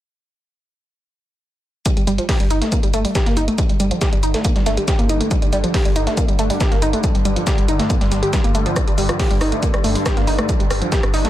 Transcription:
1.85 G2 D3 G3, kick, closed hi-hat, shaker
1.97 G1 G3, closed hi-hat
2.07 G1 G3, closed hi-hat, shaker
2.18 F3, closed hi-hat
2.29 G4, kick, snare, closed hi-hat, open hi-hat
2.40 G1 G3, closed hi-hat
2.50 G1 D#4, closed hi-hat, shaker
2.62 A3, snare, closed hi-hat
2.72 A#3, kick, closed hi-hat, shaker
2.83 G1 G3, closed hi-hat
2.94 G1 A3, closed hi-hat, shaker
3.05 G3, closed hi-hat
3.15 G4, kick, snare, closed hi-hat, shaker
3.26 G1 A#3, snare, closed hi-hat
3.37 G1 D#4, closed hi-hat, shaker
3.48 A3, closed hi-hat
3.58 G3, kick, closed hi-hat, shaker
3.69 G1 G3, closed hi-hat
3.80 G1 G3, closed hi-hat, shaker
3.91 F3, closed hi-hat
4.01 G4, kick, snare, closed hi-hat, shaker
4.13 G1 G3, closed hi-hat
4.23 G1 D#4, closed hi-hat, shaker
4.34 A3, snare, closed hi-hat
4.45 A#3, kick, closed hi-hat, shaker
4.56 G1 G3, snare, closed hi-hat
4.66 G1 A3, snare, closed hi-hat, shaker
4.77 G3, closed hi-hat
4.88 G4, kick, snare, closed hi-hat, shaker
4.99 G1 A#3, closed hi-hat
5.09 G1 D#4, closed hi-hat, shaker
5.21 A3, closed hi-hat
5.31 G3, kick, closed hi-hat, shaker
5.42 G1 G3, closed hi-hat
5.53 G1 G3, closed hi-hat, shaker
5.64 F3, closed hi-hat
5.74 G4, kick, snare, closed hi-hat, open hi-hat
5.85 G1 G3, closed hi-hat
5.96 G1 D#4, closed hi-hat, shaker
6.07 A3, snare, closed hi-hat
6.17 A#3, kick, closed hi-hat, shaker
6.28 G1 G3, closed hi-hat
6.39 G1 A3, closed hi-hat, shaker
6.50 G3, closed hi-hat
6.61 G4, kick, snare, closed hi-hat, shaker
6.72 G1 A#3, snare, closed hi-hat
6.82 G1 D#4, closed hi-hat, shaker
6.93 A3, closed hi-hat
7.04 G3, kick, closed hi-hat, shaker
7.15 G1 G3, closed hi-hat
7.25 G1 G3, closed hi-hat, shaker
7.36 F3, closed hi-hat
7.47 G4, kick, snare, closed hi-hat, shaker
7.58 G1 G3, closed hi-hat
7.68 G1 D#4, closed hi-hat, shaker
7.79 A3, snare, closed hi-hat
7.90 A#3, kick, closed hi-hat, shaker
8.01 G1 G3, snare, closed hi-hat
8.11 G1 G3, snare, closed hi-hat, shaker
8.23 G4, closed hi-hat
8.33 G3, kick, snare, closed hi-hat, shaker
8.44 G1 A#3, closed hi-hat
8.55 G1 A3, closed hi-hat, shaker
8.66 F3, closed hi-hat
8.76 G3, kick, cross-stick, closed hi-hat, shaker
8.87 G1 G3, closed hi-hat
8.98 G1 G3, open hi-hat, shaker
9.09 F3, cross-stick, closed hi-hat
9.19 G4, kick, snare, closed hi-hat, open hi-hat
9.31 G1 G3, closed hi-hat
9.41 G1 D#4, cross-stick, open hi-hat, shaker
9.52 A3, closed hi-hat
9.63 A#3, kick, closed hi-hat, shaker
9.74 G1 G3, cross-stick, closed hi-hat
9.84 G1 A3, open hi-hat, shaker
9.95 G3, closed hi-hat
10.06 G4, kick, cross-stick, snare, closed hi-hat, shaker
10.17 G1 A#3, snare, closed hi-hat
10.27 G1 D#4, open hi-hat, shaker
10.38 A3, cross-stick, closed hi-hat
10.49 G3, kick, closed hi-hat, shaker
10.60 G1 G3, closed hi-hat
10.70 G1 G3, cross-stick, open hi-hat, shaker
10.82 F3, closed hi-hat
10.92 G4, kick, snare, closed hi-hat, shaker
11.03 G1 G3, cross-stick, closed hi-hat
11.14 G1 D#4, open hi-hat, shaker
11.25 A3, snare, closed hi-hat

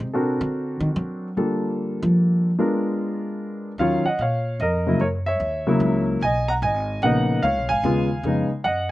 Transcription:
0.00 C3
0.13 C4 D4 F#4 A4 A#4
0.41 D3
0.80 D#3
0.96 F#3
1.37 D3 G3 A#3 D4 F4 A4
2.03 F3
2.59 G#3 B3 D4 F4 A#4
3.78 D#2 D#3 F#3 C#4 F4 C#5 F5
4.05 D#5 F#5, muted upright bass stroke
4.19 A#2 C#5 F5
4.60 F2 A#4 D#5
4.87 C#3 F#3 A#3 E4
5.00 F#2 A#4 C#5
5.26 C#5 E5
5.40 D#2
5.67 C#3 F#3 A#3 E4
5.80 C#2
6.21 B1 D#5 G#5
6.48 F#5 A#5
6.62 G#1 D#5 G#5
7.02 A#1 C#3 A#3 B3 D#4 D#5 F#5
7.43 C#2 C#5 F5
7.57 B1
7.69 G#1 F5 G#5
7.83 D#2 C#3 G#3 B3 F4
8.23 F2 C#3 G#3 B3 D#4
8.50 muted upright bass stroke
8.64 F#2 D#5 F#5

